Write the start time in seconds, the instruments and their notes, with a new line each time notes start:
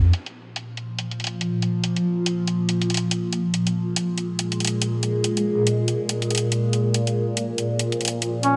Already playing: sub bass F2
0.13 synth drone A#2 F3, closed hi-hat
0.26 closed hi-hat
0.56 closed hi-hat
0.77 closed hi-hat
0.99 closed hi-hat
1.11 closed hi-hat
1.20 closed hi-hat
1.24 closed hi-hat
1.27 closed hi-hat
1.41 closed hi-hat
1.62 closed hi-hat
1.84 closed hi-hat
1.96 closed hi-hat
2.26 closed hi-hat
2.47 closed hi-hat
2.69 closed hi-hat
2.82 closed hi-hat
2.90 closed hi-hat
2.94 closed hi-hat
2.97 closed hi-hat
3.11 closed hi-hat
3.33 closed hi-hat
3.54 synth drone G#3, closed hi-hat
3.67 closed hi-hat
3.96 closed hi-hat
4.18 closed hi-hat
4.39 closed hi-hat
4.52 closed hi-hat
4.60 closed hi-hat
4.65 closed hi-hat
4.67 closed hi-hat
4.82 closed hi-hat
5.03 closed hi-hat
5.24 closed hi-hat
5.37 closed hi-hat
5.67 closed hi-hat
5.88 closed hi-hat
6.09 closed hi-hat
6.22 closed hi-hat
6.31 closed hi-hat
6.35 closed hi-hat
6.38 closed hi-hat
6.52 closed hi-hat
6.73 closed hi-hat
6.94 synth drone F3, closed hi-hat
7.07 closed hi-hat
7.37 closed hi-hat
7.58 closed hi-hat
7.79 closed hi-hat
7.92 closed hi-hat
8.01 closed hi-hat
8.05 closed hi-hat
8.08 closed hi-hat
8.22 closed hi-hat
8.43 duduk C#4, closed hi-hat